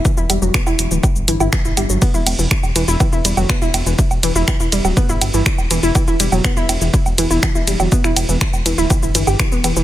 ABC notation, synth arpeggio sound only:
X:1
M:4/4
L:1/16
Q:1/4=122
K:Em
V:1 name="Synth arpeggio sound"
[E,E] [Ee] [G,G] [F,F] [B,B] [Ee] z [E,E] z2 [E,E] [Ee] [E,E] [Ee] [G,G] [F,F] | [B,B] [Ee] z [E,E] z2 [E,E] [Ee] [E,E] [Ee] [G,G] [F,F] [B,B] [Ee] z [E,E] | z2 [E,E] [Ee] E, [Ee] [G,G] [F,F] [B,B] [Ee] z [E,E] z2 [E,E] [Ee] | [E,E] [Ee] [G,G] [F,F] [B,B] [Ee] z [E,E] z2 [E,E] [Ee] E, [Ee] [G,G] [F,F] |
[B,B] [Ee] z [E,E] z2 [E,E] [Ee] [E,E] [Ee] [E,E] [Gg] [E,E] [B,B] [E,E] [E,E] |]